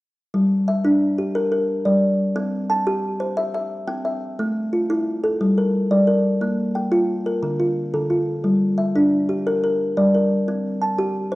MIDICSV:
0, 0, Header, 1, 2, 480
1, 0, Start_track
1, 0, Tempo, 338028
1, 476, Time_signature, 12, 3, 24, 8
1, 16120, End_track
2, 0, Start_track
2, 0, Title_t, "Kalimba"
2, 0, Program_c, 0, 108
2, 483, Note_on_c, 0, 55, 74
2, 958, Note_off_c, 0, 55, 0
2, 964, Note_on_c, 0, 76, 60
2, 1201, Note_on_c, 0, 62, 76
2, 1676, Note_off_c, 0, 62, 0
2, 1678, Note_off_c, 0, 76, 0
2, 1681, Note_on_c, 0, 67, 60
2, 1919, Note_on_c, 0, 70, 72
2, 2138, Note_off_c, 0, 70, 0
2, 2155, Note_on_c, 0, 70, 63
2, 2396, Note_off_c, 0, 67, 0
2, 2631, Note_on_c, 0, 74, 56
2, 2634, Note_on_c, 0, 55, 67
2, 2872, Note_off_c, 0, 70, 0
2, 3112, Note_off_c, 0, 55, 0
2, 3347, Note_on_c, 0, 60, 81
2, 3350, Note_off_c, 0, 74, 0
2, 3827, Note_on_c, 0, 81, 65
2, 3828, Note_off_c, 0, 60, 0
2, 4070, Note_on_c, 0, 67, 77
2, 4544, Note_on_c, 0, 72, 59
2, 4547, Note_off_c, 0, 81, 0
2, 4549, Note_off_c, 0, 67, 0
2, 4784, Note_on_c, 0, 76, 76
2, 5015, Note_off_c, 0, 76, 0
2, 5032, Note_on_c, 0, 76, 64
2, 5265, Note_off_c, 0, 72, 0
2, 5502, Note_on_c, 0, 79, 55
2, 5503, Note_on_c, 0, 60, 74
2, 5733, Note_off_c, 0, 76, 0
2, 5750, Note_on_c, 0, 76, 61
2, 5985, Note_off_c, 0, 60, 0
2, 6224, Note_off_c, 0, 79, 0
2, 6235, Note_on_c, 0, 57, 73
2, 6468, Note_off_c, 0, 76, 0
2, 6711, Note_off_c, 0, 57, 0
2, 6713, Note_on_c, 0, 65, 62
2, 6955, Note_on_c, 0, 64, 76
2, 7430, Note_off_c, 0, 65, 0
2, 7431, Note_off_c, 0, 64, 0
2, 7432, Note_on_c, 0, 69, 65
2, 7676, Note_on_c, 0, 55, 71
2, 7909, Note_off_c, 0, 69, 0
2, 7917, Note_on_c, 0, 70, 60
2, 8151, Note_off_c, 0, 55, 0
2, 8389, Note_on_c, 0, 55, 67
2, 8390, Note_on_c, 0, 74, 57
2, 8606, Note_off_c, 0, 70, 0
2, 8623, Note_on_c, 0, 70, 59
2, 8868, Note_off_c, 0, 55, 0
2, 9107, Note_on_c, 0, 58, 70
2, 9109, Note_off_c, 0, 74, 0
2, 9345, Note_off_c, 0, 70, 0
2, 9587, Note_off_c, 0, 58, 0
2, 9589, Note_on_c, 0, 79, 61
2, 9823, Note_on_c, 0, 65, 77
2, 10306, Note_off_c, 0, 65, 0
2, 10309, Note_off_c, 0, 79, 0
2, 10311, Note_on_c, 0, 70, 61
2, 10545, Note_on_c, 0, 50, 74
2, 10787, Note_on_c, 0, 65, 60
2, 10790, Note_off_c, 0, 70, 0
2, 11027, Note_off_c, 0, 50, 0
2, 11271, Note_on_c, 0, 50, 69
2, 11272, Note_on_c, 0, 69, 55
2, 11486, Note_off_c, 0, 65, 0
2, 11503, Note_on_c, 0, 65, 59
2, 11751, Note_off_c, 0, 50, 0
2, 11984, Note_on_c, 0, 55, 70
2, 11992, Note_off_c, 0, 69, 0
2, 12227, Note_off_c, 0, 65, 0
2, 12465, Note_on_c, 0, 76, 57
2, 12468, Note_off_c, 0, 55, 0
2, 12718, Note_on_c, 0, 62, 75
2, 13190, Note_off_c, 0, 76, 0
2, 13194, Note_on_c, 0, 67, 59
2, 13196, Note_off_c, 0, 62, 0
2, 13442, Note_on_c, 0, 70, 73
2, 13665, Note_off_c, 0, 70, 0
2, 13682, Note_on_c, 0, 70, 64
2, 13915, Note_off_c, 0, 67, 0
2, 14156, Note_on_c, 0, 55, 73
2, 14158, Note_on_c, 0, 74, 57
2, 14388, Note_off_c, 0, 70, 0
2, 14405, Note_on_c, 0, 70, 59
2, 14636, Note_off_c, 0, 55, 0
2, 14878, Note_off_c, 0, 74, 0
2, 14884, Note_on_c, 0, 60, 71
2, 15121, Note_off_c, 0, 70, 0
2, 15361, Note_off_c, 0, 60, 0
2, 15361, Note_on_c, 0, 81, 56
2, 15601, Note_on_c, 0, 67, 74
2, 16072, Note_on_c, 0, 72, 62
2, 16080, Note_off_c, 0, 67, 0
2, 16081, Note_off_c, 0, 81, 0
2, 16120, Note_off_c, 0, 72, 0
2, 16120, End_track
0, 0, End_of_file